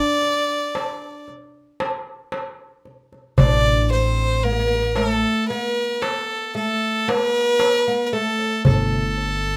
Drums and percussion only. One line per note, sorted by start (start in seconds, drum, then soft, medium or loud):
0.22 darbuka ka soft
0.75 darbuka tek medium
1.28 darbuka ka soft
1.80 darbuka tek medium
2.32 darbuka tek medium
2.85 darbuka ka soft
3.12 darbuka ka soft
3.38 darbuka dum medium
4.96 darbuka tek medium
5.50 darbuka ka soft
6.02 darbuka tek medium
6.55 darbuka ka soft
7.09 darbuka tek medium
7.60 darbuka tek medium
8.14 darbuka ka soft
8.39 darbuka ka soft
8.65 darbuka dum medium
9.17 darbuka ka soft